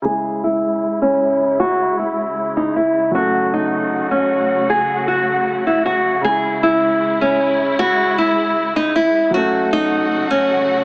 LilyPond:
<<
  \new Staff \with { instrumentName = "Nylon-string guitar" } { \time 4/4 \key cis \minor \tempo 4 = 155 gis'4 e'4. cis'4. | fis'4 e'4. dis'8 e'4 | fis'4 dis'4. cis'4. | gis'4 fis'4. e'8 fis'4 |
gis'4 e'4. cis'4. | fis'4 e'4. dis'8 e'4 | fis'4 dis'4. cis'4. | }
  \new Staff \with { instrumentName = "String section" } { \time 4/4 \key cis \minor << { <gis e'>1~ | <gis e'>1 | <a fis'>1~ | <a fis'>1 |
<gis e'>1~ | <gis e'>1 | <a fis'>1 | } \\ { cis1~ | cis1~ | cis1~ | cis1~ |
cis1~ | cis1 | cis1 | } >> }
  \new Staff \with { instrumentName = "Grand piano" } { \clef bass \time 4/4 \key cis \minor <cis gis e'>1~ | <cis gis e'>1 | <fis a cis'>1~ | <fis a cis'>1 |
<cis gis e'>1~ | <cis gis e'>1 | <fis a cis'>1 | }
>>